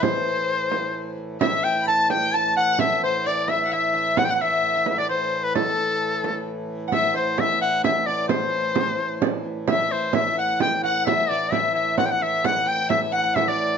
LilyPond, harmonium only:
\new Staff \with { instrumentName = "Harmonium" } { \clef bass \time 3/4 \key a \dorian \tempo 4 = 130 <a, e>2. | <a, e>2.~ | <a, e>2.~ | <a, e>2.~ |
<a, e>2. | <a, e>2.~ | <a, e>2.~ | <a, e>2.~ |
<a, e>2. | <a, e>2. | }